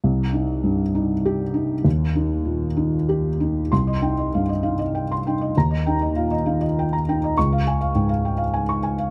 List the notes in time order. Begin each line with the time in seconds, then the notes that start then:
0.04 C2
0.33 D#4
0.64 G2
0.95 D#4
1.25 G4
1.54 D#4
1.85 D#2
2.15 D#4
2.45 A#2
2.77 D#4
3.09 G4
3.40 D#4
3.72 C2 C6
3.87 D#5
4.02 D#4 G5
4.18 D#5
4.34 G2 F5
4.49 D#5
4.63 D#4 F5
4.79 D#5
4.95 G5
5.12 C6
5.27 D#4 G5
5.41 D#5
5.57 D#2 A#5
5.71 D#5
5.86 D#4 G5
6.01 D#5
6.16 A#2 F5
6.31 D#5
6.46 D#4 F5
6.61 D#5
6.79 G5
6.93 A#5
7.08 D#4 G5
7.24 D#5
7.37 C#2 C#6
7.52 F5
7.67 G#5
7.81 F5
7.95 G#2 G5
8.09 F5
8.25 G5
8.38 F5
8.54 G#5
8.69 C#6
8.83 G#5
8.98 F5